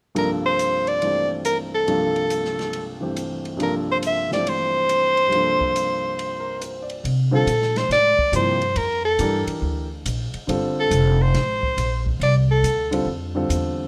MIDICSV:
0, 0, Header, 1, 6, 480
1, 0, Start_track
1, 0, Tempo, 430416
1, 175, Time_signature, 4, 2, 24, 8
1, 15476, End_track
2, 0, Start_track
2, 0, Title_t, "Soprano saxophone"
2, 0, Program_c, 0, 64
2, 200, Note_on_c, 0, 70, 65
2, 336, Note_off_c, 0, 70, 0
2, 511, Note_on_c, 0, 72, 84
2, 983, Note_on_c, 0, 74, 76
2, 999, Note_off_c, 0, 72, 0
2, 1456, Note_off_c, 0, 74, 0
2, 1623, Note_on_c, 0, 70, 70
2, 1762, Note_off_c, 0, 70, 0
2, 1946, Note_on_c, 0, 69, 63
2, 3332, Note_off_c, 0, 69, 0
2, 4047, Note_on_c, 0, 70, 61
2, 4181, Note_off_c, 0, 70, 0
2, 4368, Note_on_c, 0, 72, 75
2, 4433, Note_off_c, 0, 72, 0
2, 4535, Note_on_c, 0, 76, 77
2, 4809, Note_off_c, 0, 76, 0
2, 4833, Note_on_c, 0, 74, 75
2, 5006, Note_on_c, 0, 72, 91
2, 5022, Note_off_c, 0, 74, 0
2, 7390, Note_off_c, 0, 72, 0
2, 8201, Note_on_c, 0, 69, 80
2, 8676, Note_on_c, 0, 72, 77
2, 8692, Note_off_c, 0, 69, 0
2, 8827, Note_off_c, 0, 72, 0
2, 8840, Note_on_c, 0, 74, 102
2, 9274, Note_off_c, 0, 74, 0
2, 9321, Note_on_c, 0, 72, 82
2, 9787, Note_on_c, 0, 70, 73
2, 9804, Note_off_c, 0, 72, 0
2, 10086, Note_off_c, 0, 70, 0
2, 10093, Note_on_c, 0, 69, 74
2, 10538, Note_off_c, 0, 69, 0
2, 12045, Note_on_c, 0, 69, 74
2, 12518, Note_on_c, 0, 72, 80
2, 12535, Note_off_c, 0, 69, 0
2, 13463, Note_off_c, 0, 72, 0
2, 13640, Note_on_c, 0, 74, 76
2, 13776, Note_off_c, 0, 74, 0
2, 13955, Note_on_c, 0, 69, 75
2, 14389, Note_off_c, 0, 69, 0
2, 15476, End_track
3, 0, Start_track
3, 0, Title_t, "Grand piano"
3, 0, Program_c, 1, 0
3, 165, Note_on_c, 1, 43, 50
3, 166, Note_on_c, 1, 36, 51
3, 171, Note_on_c, 1, 53, 50
3, 174, Note_on_c, 1, 58, 44
3, 180, Note_on_c, 1, 62, 47
3, 180, Note_on_c, 1, 69, 60
3, 1113, Note_off_c, 1, 43, 0
3, 1129, Note_on_c, 1, 43, 35
3, 1136, Note_on_c, 1, 52, 35
3, 1141, Note_on_c, 1, 57, 36
3, 1151, Note_on_c, 1, 60, 33
3, 1159, Note_on_c, 1, 67, 38
3, 2075, Note_off_c, 1, 36, 0
3, 2078, Note_off_c, 1, 43, 0
3, 2079, Note_off_c, 1, 53, 0
3, 2080, Note_off_c, 1, 58, 0
3, 2082, Note_off_c, 1, 62, 0
3, 2090, Note_off_c, 1, 69, 0
3, 2091, Note_on_c, 1, 36, 49
3, 2094, Note_off_c, 1, 52, 0
3, 2094, Note_on_c, 1, 43, 39
3, 2096, Note_on_c, 1, 53, 44
3, 2097, Note_off_c, 1, 57, 0
3, 2097, Note_on_c, 1, 58, 42
3, 2099, Note_on_c, 1, 62, 44
3, 2102, Note_off_c, 1, 60, 0
3, 2106, Note_off_c, 1, 67, 0
3, 2107, Note_on_c, 1, 69, 53
3, 3327, Note_off_c, 1, 43, 0
3, 3343, Note_on_c, 1, 43, 36
3, 3354, Note_on_c, 1, 52, 36
3, 3365, Note_on_c, 1, 57, 35
3, 3369, Note_on_c, 1, 60, 34
3, 3378, Note_on_c, 1, 67, 44
3, 3964, Note_off_c, 1, 36, 0
3, 3975, Note_off_c, 1, 43, 0
3, 3981, Note_on_c, 1, 36, 45
3, 3983, Note_off_c, 1, 53, 0
3, 3992, Note_on_c, 1, 43, 41
3, 3995, Note_off_c, 1, 58, 0
3, 4000, Note_on_c, 1, 53, 47
3, 4006, Note_off_c, 1, 52, 0
3, 4006, Note_off_c, 1, 62, 0
3, 4011, Note_off_c, 1, 57, 0
3, 4012, Note_on_c, 1, 58, 43
3, 4013, Note_off_c, 1, 60, 0
3, 4018, Note_off_c, 1, 67, 0
3, 4019, Note_off_c, 1, 69, 0
3, 4022, Note_on_c, 1, 62, 45
3, 4036, Note_on_c, 1, 69, 49
3, 4778, Note_off_c, 1, 43, 0
3, 4795, Note_on_c, 1, 43, 37
3, 4806, Note_on_c, 1, 52, 36
3, 4812, Note_on_c, 1, 57, 39
3, 4825, Note_on_c, 1, 60, 35
3, 4829, Note_on_c, 1, 67, 43
3, 5865, Note_off_c, 1, 36, 0
3, 5881, Note_on_c, 1, 36, 43
3, 5890, Note_off_c, 1, 43, 0
3, 5907, Note_on_c, 1, 43, 40
3, 5917, Note_off_c, 1, 53, 0
3, 5930, Note_off_c, 1, 52, 0
3, 5933, Note_off_c, 1, 57, 0
3, 5933, Note_off_c, 1, 58, 0
3, 5934, Note_on_c, 1, 53, 41
3, 5938, Note_off_c, 1, 62, 0
3, 5939, Note_off_c, 1, 60, 0
3, 5942, Note_off_c, 1, 67, 0
3, 5945, Note_off_c, 1, 69, 0
3, 5960, Note_on_c, 1, 58, 40
3, 5980, Note_on_c, 1, 62, 42
3, 6003, Note_on_c, 1, 69, 47
3, 7134, Note_on_c, 1, 70, 41
3, 7373, Note_on_c, 1, 72, 38
3, 7469, Note_off_c, 1, 70, 0
3, 7612, Note_on_c, 1, 74, 47
3, 7743, Note_off_c, 1, 72, 0
3, 7828, Note_off_c, 1, 36, 0
3, 7841, Note_off_c, 1, 43, 0
3, 7854, Note_off_c, 1, 53, 0
3, 7867, Note_off_c, 1, 58, 0
3, 7877, Note_off_c, 1, 62, 0
3, 7889, Note_off_c, 1, 69, 0
3, 7948, Note_off_c, 1, 74, 0
3, 8155, Note_on_c, 1, 55, 55
3, 8156, Note_on_c, 1, 50, 60
3, 8165, Note_on_c, 1, 60, 58
3, 8170, Note_on_c, 1, 65, 59
3, 8175, Note_on_c, 1, 69, 64
3, 8311, Note_off_c, 1, 50, 0
3, 8311, Note_off_c, 1, 55, 0
3, 8316, Note_off_c, 1, 60, 0
3, 8318, Note_off_c, 1, 65, 0
3, 8321, Note_off_c, 1, 69, 0
3, 9282, Note_on_c, 1, 48, 48
3, 9289, Note_on_c, 1, 53, 44
3, 9296, Note_on_c, 1, 58, 44
3, 9298, Note_on_c, 1, 64, 48
3, 9301, Note_on_c, 1, 67, 57
3, 9572, Note_off_c, 1, 48, 0
3, 9575, Note_off_c, 1, 53, 0
3, 9578, Note_off_c, 1, 58, 0
3, 9580, Note_off_c, 1, 64, 0
3, 9581, Note_off_c, 1, 67, 0
3, 10247, Note_on_c, 1, 52, 53
3, 10259, Note_on_c, 1, 69, 47
3, 10263, Note_on_c, 1, 62, 49
3, 10267, Note_on_c, 1, 67, 55
3, 10269, Note_on_c, 1, 70, 64
3, 10982, Note_off_c, 1, 52, 0
3, 10988, Note_off_c, 1, 69, 0
3, 10990, Note_off_c, 1, 62, 0
3, 10992, Note_off_c, 1, 67, 0
3, 10993, Note_off_c, 1, 70, 0
3, 11678, Note_on_c, 1, 50, 54
3, 11691, Note_on_c, 1, 55, 51
3, 11693, Note_on_c, 1, 60, 51
3, 11696, Note_on_c, 1, 65, 52
3, 11705, Note_on_c, 1, 69, 64
3, 12418, Note_off_c, 1, 50, 0
3, 12424, Note_off_c, 1, 55, 0
3, 12425, Note_off_c, 1, 60, 0
3, 12427, Note_off_c, 1, 65, 0
3, 12431, Note_off_c, 1, 69, 0
3, 14398, Note_on_c, 1, 50, 57
3, 14406, Note_on_c, 1, 55, 54
3, 14415, Note_on_c, 1, 60, 54
3, 14421, Note_on_c, 1, 65, 52
3, 14422, Note_on_c, 1, 69, 64
3, 14552, Note_off_c, 1, 50, 0
3, 14556, Note_off_c, 1, 55, 0
3, 14560, Note_off_c, 1, 60, 0
3, 14563, Note_off_c, 1, 65, 0
3, 14563, Note_off_c, 1, 69, 0
3, 14886, Note_on_c, 1, 50, 56
3, 14890, Note_on_c, 1, 55, 46
3, 14897, Note_on_c, 1, 60, 49
3, 14902, Note_on_c, 1, 65, 49
3, 14907, Note_on_c, 1, 69, 58
3, 15476, Note_off_c, 1, 50, 0
3, 15476, Note_off_c, 1, 55, 0
3, 15476, Note_off_c, 1, 60, 0
3, 15476, Note_off_c, 1, 65, 0
3, 15476, Note_off_c, 1, 69, 0
3, 15476, End_track
4, 0, Start_track
4, 0, Title_t, "Upright bass"
4, 0, Program_c, 2, 32
4, 7851, Note_on_c, 2, 48, 72
4, 8318, Note_off_c, 2, 48, 0
4, 8324, Note_on_c, 2, 46, 79
4, 8794, Note_off_c, 2, 46, 0
4, 8800, Note_on_c, 2, 45, 68
4, 9099, Note_off_c, 2, 45, 0
4, 9279, Note_on_c, 2, 43, 73
4, 9752, Note_off_c, 2, 43, 0
4, 9763, Note_on_c, 2, 41, 76
4, 10234, Note_off_c, 2, 41, 0
4, 10242, Note_on_c, 2, 43, 77
4, 10541, Note_off_c, 2, 43, 0
4, 10722, Note_on_c, 2, 38, 65
4, 11193, Note_off_c, 2, 38, 0
4, 11211, Note_on_c, 2, 34, 70
4, 11505, Note_off_c, 2, 34, 0
4, 11688, Note_on_c, 2, 31, 68
4, 12156, Note_off_c, 2, 31, 0
4, 12162, Note_on_c, 2, 29, 89
4, 12633, Note_off_c, 2, 29, 0
4, 12652, Note_on_c, 2, 33, 70
4, 13116, Note_off_c, 2, 33, 0
4, 13123, Note_on_c, 2, 34, 73
4, 13593, Note_off_c, 2, 34, 0
4, 13602, Note_on_c, 2, 36, 78
4, 14073, Note_off_c, 2, 36, 0
4, 14084, Note_on_c, 2, 38, 77
4, 14548, Note_off_c, 2, 38, 0
4, 14555, Note_on_c, 2, 41, 71
4, 15029, Note_off_c, 2, 41, 0
4, 15047, Note_on_c, 2, 40, 74
4, 15476, Note_off_c, 2, 40, 0
4, 15476, End_track
5, 0, Start_track
5, 0, Title_t, "Muted upright bass strokes"
5, 9125, Note_on_c, 9, 29, 38
5, 9236, Note_off_c, 9, 29, 0
5, 10558, Note_on_c, 9, 29, 35
5, 10670, Note_off_c, 9, 29, 0
5, 11527, Note_on_c, 9, 29, 36
5, 11639, Note_off_c, 9, 29, 0
5, 15476, End_track
6, 0, Start_track
6, 0, Title_t, "Drums"
6, 179, Note_on_c, 9, 51, 49
6, 291, Note_off_c, 9, 51, 0
6, 660, Note_on_c, 9, 44, 44
6, 660, Note_on_c, 9, 51, 50
6, 772, Note_off_c, 9, 44, 0
6, 772, Note_off_c, 9, 51, 0
6, 971, Note_on_c, 9, 51, 31
6, 1082, Note_off_c, 9, 51, 0
6, 1135, Note_on_c, 9, 51, 44
6, 1246, Note_off_c, 9, 51, 0
6, 1615, Note_on_c, 9, 44, 44
6, 1615, Note_on_c, 9, 51, 48
6, 1726, Note_off_c, 9, 44, 0
6, 1726, Note_off_c, 9, 51, 0
6, 2093, Note_on_c, 9, 51, 41
6, 2204, Note_off_c, 9, 51, 0
6, 2407, Note_on_c, 9, 51, 32
6, 2519, Note_off_c, 9, 51, 0
6, 2568, Note_on_c, 9, 44, 50
6, 2568, Note_on_c, 9, 51, 52
6, 2679, Note_off_c, 9, 44, 0
6, 2679, Note_off_c, 9, 51, 0
6, 2731, Note_on_c, 9, 38, 23
6, 2843, Note_off_c, 9, 38, 0
6, 2887, Note_on_c, 9, 51, 31
6, 2898, Note_on_c, 9, 38, 27
6, 2998, Note_off_c, 9, 51, 0
6, 3009, Note_off_c, 9, 38, 0
6, 3047, Note_on_c, 9, 51, 49
6, 3158, Note_off_c, 9, 51, 0
6, 3529, Note_on_c, 9, 44, 54
6, 3529, Note_on_c, 9, 51, 49
6, 3641, Note_off_c, 9, 44, 0
6, 3641, Note_off_c, 9, 51, 0
6, 3849, Note_on_c, 9, 51, 33
6, 3960, Note_off_c, 9, 51, 0
6, 4014, Note_on_c, 9, 51, 43
6, 4125, Note_off_c, 9, 51, 0
6, 4490, Note_on_c, 9, 44, 47
6, 4490, Note_on_c, 9, 51, 58
6, 4601, Note_off_c, 9, 44, 0
6, 4601, Note_off_c, 9, 51, 0
6, 4812, Note_on_c, 9, 38, 34
6, 4923, Note_off_c, 9, 38, 0
6, 4981, Note_on_c, 9, 51, 50
6, 5093, Note_off_c, 9, 51, 0
6, 5456, Note_on_c, 9, 44, 49
6, 5456, Note_on_c, 9, 51, 57
6, 5568, Note_off_c, 9, 44, 0
6, 5568, Note_off_c, 9, 51, 0
6, 5767, Note_on_c, 9, 51, 37
6, 5878, Note_off_c, 9, 51, 0
6, 5936, Note_on_c, 9, 51, 45
6, 6048, Note_off_c, 9, 51, 0
6, 6253, Note_on_c, 9, 36, 35
6, 6364, Note_off_c, 9, 36, 0
6, 6420, Note_on_c, 9, 44, 45
6, 6420, Note_on_c, 9, 51, 54
6, 6532, Note_off_c, 9, 44, 0
6, 6532, Note_off_c, 9, 51, 0
6, 6903, Note_on_c, 9, 51, 49
6, 7014, Note_off_c, 9, 51, 0
6, 7378, Note_on_c, 9, 44, 43
6, 7378, Note_on_c, 9, 51, 48
6, 7489, Note_off_c, 9, 44, 0
6, 7489, Note_off_c, 9, 51, 0
6, 7691, Note_on_c, 9, 51, 36
6, 7802, Note_off_c, 9, 51, 0
6, 7863, Note_on_c, 9, 51, 57
6, 7975, Note_off_c, 9, 51, 0
6, 8334, Note_on_c, 9, 44, 53
6, 8334, Note_on_c, 9, 51, 65
6, 8446, Note_off_c, 9, 44, 0
6, 8446, Note_off_c, 9, 51, 0
6, 8496, Note_on_c, 9, 38, 25
6, 8608, Note_off_c, 9, 38, 0
6, 8654, Note_on_c, 9, 51, 37
6, 8660, Note_on_c, 9, 38, 37
6, 8766, Note_off_c, 9, 51, 0
6, 8772, Note_off_c, 9, 38, 0
6, 8821, Note_on_c, 9, 38, 32
6, 8821, Note_on_c, 9, 51, 52
6, 8933, Note_off_c, 9, 38, 0
6, 8933, Note_off_c, 9, 51, 0
6, 9129, Note_on_c, 9, 36, 47
6, 9240, Note_off_c, 9, 36, 0
6, 9289, Note_on_c, 9, 44, 52
6, 9289, Note_on_c, 9, 51, 56
6, 9401, Note_off_c, 9, 44, 0
6, 9401, Note_off_c, 9, 51, 0
6, 9608, Note_on_c, 9, 51, 39
6, 9719, Note_off_c, 9, 51, 0
6, 9766, Note_on_c, 9, 51, 60
6, 9878, Note_off_c, 9, 51, 0
6, 10246, Note_on_c, 9, 44, 45
6, 10246, Note_on_c, 9, 51, 63
6, 10358, Note_off_c, 9, 44, 0
6, 10358, Note_off_c, 9, 51, 0
6, 10565, Note_on_c, 9, 51, 56
6, 10677, Note_off_c, 9, 51, 0
6, 11215, Note_on_c, 9, 44, 53
6, 11215, Note_on_c, 9, 51, 67
6, 11326, Note_off_c, 9, 44, 0
6, 11326, Note_off_c, 9, 51, 0
6, 11527, Note_on_c, 9, 51, 40
6, 11638, Note_off_c, 9, 51, 0
6, 11697, Note_on_c, 9, 51, 59
6, 11809, Note_off_c, 9, 51, 0
6, 12170, Note_on_c, 9, 44, 57
6, 12170, Note_on_c, 9, 51, 59
6, 12281, Note_off_c, 9, 44, 0
6, 12281, Note_off_c, 9, 51, 0
6, 12651, Note_on_c, 9, 38, 36
6, 12651, Note_on_c, 9, 51, 54
6, 12762, Note_off_c, 9, 38, 0
6, 12762, Note_off_c, 9, 51, 0
6, 12970, Note_on_c, 9, 36, 44
6, 13081, Note_off_c, 9, 36, 0
6, 13135, Note_on_c, 9, 44, 43
6, 13135, Note_on_c, 9, 51, 61
6, 13246, Note_off_c, 9, 44, 0
6, 13246, Note_off_c, 9, 51, 0
6, 13452, Note_on_c, 9, 36, 46
6, 13563, Note_off_c, 9, 36, 0
6, 13621, Note_on_c, 9, 51, 55
6, 13732, Note_off_c, 9, 51, 0
6, 14097, Note_on_c, 9, 44, 54
6, 14097, Note_on_c, 9, 51, 57
6, 14208, Note_off_c, 9, 44, 0
6, 14208, Note_off_c, 9, 51, 0
6, 14414, Note_on_c, 9, 51, 53
6, 14526, Note_off_c, 9, 51, 0
6, 15057, Note_on_c, 9, 44, 53
6, 15057, Note_on_c, 9, 51, 56
6, 15168, Note_off_c, 9, 44, 0
6, 15168, Note_off_c, 9, 51, 0
6, 15476, End_track
0, 0, End_of_file